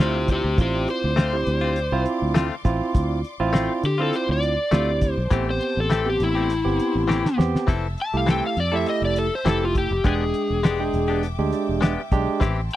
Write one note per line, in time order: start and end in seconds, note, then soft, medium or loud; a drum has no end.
0.00 0.41 D2 medium
0.00 0.17 A3 medium
0.00 0.17 C4 medium
0.00 0.43 C4 medium
0.00 0.43 E4 medium
0.00 0.18 F4 medium
0.00 0.43 F4 medium
0.00 0.28 G4 medium
0.00 0.29 C5 medium
0.00 5.27 D5 medium
0.00 5.27 C6 medium
0.00 5.27 D6 medium
0.00 snare loud
0.28 0.58 G4 medium
0.28 kick medium
0.28 closed hi-hat medium
0.33 0.59 C5 medium
0.44 0.57 D2 medium
0.58 0.86 A1 loud
0.58 1.13 C4 medium
0.58 1.13 E4 medium
0.58 1.13 F4 medium
0.58 0.87 G4 medium
0.58 kick loud
0.58 closed hi-hat medium
0.62 0.89 C5 medium
0.88 2.04 C5 loud
0.88 closed hi-hat medium
1.04 1.44 D2 medium
1.16 1.35 A3 medium
1.16 1.36 C4 medium
1.16 1.36 F4 medium
1.16 snare loud
1.16 closed hi-hat medium
1.33 1.76 C4 medium
1.33 1.76 E4 medium
1.33 1.76 G4 medium
1.47 1.89 D2 medium
1.47 closed hi-hat medium
1.61 1.80 C4 soft
1.61 1.79 F4 soft
1.76 closed hi-hat medium
1.92 2.05 C2 medium
1.92 2.46 C4 medium
1.92 2.46 E4 medium
1.92 2.46 F4 loud
2.06 closed hi-hat medium
2.22 2.49 D2 medium
2.34 2.54 A3 medium
2.34 2.54 C4 medium
2.34 2.55 F4 loud
2.34 snare loud
2.34 closed hi-hat medium
2.65 2.80 A1 loud
2.65 3.20 C4 medium
2.65 3.20 E4 medium
2.65 3.20 F4 loud
2.65 kick medium
2.65 closed hi-hat medium
2.81 muted fingered electric bass stroke soft
2.95 3.22 D2 loud
2.95 kick loud
2.95 closed hi-hat medium
3.24 closed hi-hat medium
3.40 3.67 A1 medium
3.40 3.83 C4 loud
3.40 3.83 E4 medium
3.40 3.83 F4 loud
3.53 3.72 A3 medium
3.53 3.72 C4 medium
3.53 3.73 F4 medium
3.53 snare medium
3.53 closed hi-hat medium
3.83 4.11 D3 medium
3.83 4.00 G4 medium
3.83 closed hi-hat medium
3.98 4.53 C4 medium
3.98 4.17 C4 soft
3.98 4.53 E4 medium
3.98 4.16 F4 soft
3.98 4.53 F4 medium
4.02 4.14 A4 medium
4.13 4.30 C5 medium
4.13 closed hi-hat medium
4.29 4.56 D2 medium
4.29 5.13 D5 medium
4.43 closed hi-hat medium
4.71 5.14 D2 loud
4.71 4.90 A3 medium
4.71 5.16 C4 medium
4.71 4.91 C4 medium
4.71 5.16 E4 medium
4.71 4.91 F4 medium
4.71 5.16 G4 medium
4.71 snare loud
4.71 closed hi-hat medium
5.01 kick medium
5.01 closed hi-hat medium
5.13 5.45 C5 medium
5.17 5.30 B1 medium
5.31 5.59 A1 loud
5.31 5.49 E3 medium
5.31 5.50 A3 medium
5.31 5.86 B3 medium
5.31 5.86 C4 medium
5.31 5.50 C4 medium
5.31 5.86 G4 medium
5.31 5.51 G4 medium
5.31 7.65 G5 medium
5.31 10.00 A5 medium
5.31 7.65 C6 medium
5.31 kick loud
5.31 closed hi-hat medium
5.50 5.78 C5 medium
5.61 closed hi-hat medium
5.77 6.17 A1 medium
5.77 6.07 A4 medium
5.90 6.09 E3 medium
5.90 6.09 A3 medium
5.90 6.09 C4 medium
5.90 6.10 G4 medium
5.90 snare medium
5.90 closed hi-hat medium
6.06 6.49 B3 medium
6.06 6.49 C4 medium
6.06 6.49 G4 medium
6.06 6.21 G4 medium
6.20 6.62 A1 medium
6.20 7.36 E4 medium
6.20 closed hi-hat medium
6.35 6.54 A3 soft
6.35 6.53 C4 soft
6.35 6.52 G4 soft
6.50 closed hi-hat medium
6.65 6.78 G1 medium
6.65 7.19 B3 medium
6.65 7.19 C4 medium
6.65 7.19 G4 medium
6.80 closed hi-hat medium
6.95 7.23 A1 medium
7.08 7.27 E3 medium
7.08 7.27 A3 medium
7.08 7.27 C4 medium
7.08 7.28 G4 medium
7.08 snare medium
7.26 snare medium
7.38 7.53 E2 medium
7.38 7.68 B3 medium
7.38 7.68 C4 medium
7.38 7.68 G4 loud
7.38 snare medium
7.55 muted fingered electric bass stroke soft
7.55 snare medium
7.67 7.95 F1 loud
7.67 7.86 E3 medium
7.67 7.86 C4 medium
7.67 7.87 E4 medium
7.67 7.87 A4 medium
7.67 10.02 E5 medium
7.67 10.02 E6 medium
7.67 kick loud
7.67 closed hi-hat medium
7.67 splash medium
7.98 8.15 A5 medium
7.98 closed hi-hat medium
8.13 8.41 C2 medium
8.13 8.56 A3 medium
8.13 8.56 E4 medium
8.13 8.56 G4 medium
8.13 8.29 F5 medium
8.26 8.45 E3 medium
8.26 8.46 C4 medium
8.26 8.46 E4 medium
8.26 8.46 A4 medium
8.26 snare medium
8.26 closed hi-hat medium
8.31 8.44 G5 medium
8.46 8.58 F5 medium
8.57 8.84 F2 medium
8.57 8.74 D5 medium
8.57 closed hi-hat medium
8.72 9.26 A3 medium
8.72 8.91 C4 soft
8.72 9.26 E4 medium
8.72 8.90 E4 soft
8.72 9.27 G4 medium
8.72 8.89 A4 soft
8.72 8.88 E5 medium
8.86 9.03 D#5 medium
8.86 closed hi-hat medium
9.02 9.29 F1 medium
9.02 9.17 D5 medium
9.16 9.32 A4 medium
9.16 closed hi-hat medium
9.35 9.47 C5 medium
9.45 9.88 F1 medium
9.45 9.64 E3 medium
9.45 9.89 A3 medium
9.45 9.64 C4 medium
9.45 9.90 E4 medium
9.45 9.64 E4 medium
9.45 9.89 G4 medium
9.45 9.65 A4 medium
9.45 snare medium
9.45 closed hi-hat medium
9.49 9.62 A4 medium
9.65 9.76 F4 medium
9.75 10.05 G4 medium
9.75 kick medium
9.75 closed hi-hat medium
9.91 10.04 F1 medium
10.04 10.32 E1 medium
10.04 10.23 G#3 medium
10.04 10.59 G#3 medium
10.04 10.23 B3 medium
10.04 10.59 D4 medium
10.04 10.24 D4 medium
10.04 10.24 G4 medium
10.04 11.21 G#4 medium
10.04 12.39 E5 medium
10.04 12.76 G5 medium
10.04 10.59 G5 medium
10.04 12.39 D6 medium
10.04 kick loud
10.04 closed hi-hat medium
10.34 closed hi-hat medium
10.50 10.90 E1 medium
10.63 10.82 G#3 medium
10.63 10.83 B3 medium
10.63 10.83 D4 medium
10.63 10.83 G4 medium
10.63 snare loud
10.63 closed hi-hat medium
10.80 11.22 G#3 medium
10.80 11.22 D4 medium
10.80 11.22 G5 medium
10.94 11.36 E1 medium
10.94 closed hi-hat medium
11.08 11.27 B3 soft
11.08 11.26 D4 soft
11.08 11.26 G4 medium
11.23 closed hi-hat medium
11.38 11.51 D2 medium
11.38 11.93 G#3 medium
11.38 11.93 D4 medium
11.38 11.93 G4 medium
11.53 11.81 D5 medium
11.53 closed hi-hat medium
11.69 11.96 E1 medium
11.81 12.00 G#3 medium
11.81 12.00 B3 medium
11.81 12.01 D4 medium
11.81 12.01 G4 loud
11.81 12.10 E5 medium
11.81 snare loud
11.81 closed hi-hat medium
12.12 12.26 B1 loud
12.12 12.42 G#3 loud
12.12 12.42 D4 medium
12.12 12.42 G4 loud
12.12 12.40 G5 medium
12.12 kick medium
12.12 closed hi-hat medium
12.27 muted fingered electric bass stroke soft
12.40 12.69 A1 medium
12.40 12.59 E3 medium
12.40 12.60 C4 medium
12.40 12.60 E4 medium
12.40 12.60 G4 medium
12.40 12.76 A5 medium
12.40 12.76 C6 medium
12.40 kick loud
12.40 closed hi-hat medium
12.71 closed hi-hat medium